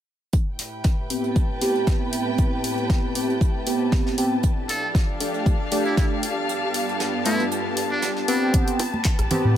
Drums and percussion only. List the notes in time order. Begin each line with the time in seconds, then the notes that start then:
0.33 kick, closed hi-hat
0.59 snare, closed hi-hat, open hi-hat
0.84 kick, snare, closed hi-hat
1.10 closed hi-hat, open hi-hat
1.24 closed hi-hat
1.36 kick, closed hi-hat
1.61 snare, closed hi-hat, open hi-hat
1.75 closed hi-hat
1.87 kick, snare, closed hi-hat
2.13 closed hi-hat, open hi-hat
2.38 kick, closed hi-hat
2.64 closed hi-hat, open hi-hat
2.78 closed hi-hat
2.90 kick, snare, closed hi-hat
3.15 closed hi-hat, open hi-hat
3.30 closed hi-hat
3.41 kick, closed hi-hat
3.66 closed hi-hat, open hi-hat
3.92 kick, snare, closed hi-hat
4.06 snare
4.18 closed hi-hat, open hi-hat
4.43 kick, closed hi-hat
4.69 snare, closed hi-hat, open hi-hat
4.95 kick, snare, closed hi-hat
5.20 closed hi-hat, open hi-hat
5.34 closed hi-hat
5.46 kick, closed hi-hat
5.71 snare, closed hi-hat, open hi-hat
5.85 closed hi-hat
5.97 kick, snare, closed hi-hat
6.23 closed hi-hat, open hi-hat
6.49 closed hi-hat
6.74 closed hi-hat, open hi-hat
6.89 closed hi-hat
7.00 snare, closed hi-hat
7.25 closed hi-hat, open hi-hat
7.40 closed hi-hat
7.52 closed hi-hat
7.77 closed hi-hat, open hi-hat
8.02 snare, closed hi-hat
8.16 snare
8.28 closed hi-hat, open hi-hat
8.54 kick, closed hi-hat
8.68 closed hi-hat
8.79 open hi-hat, high bongo
8.94 high conga
9.05 kick, clap, closed hi-hat
9.19 cross-stick, closed hi-hat
9.31 open hi-hat, low conga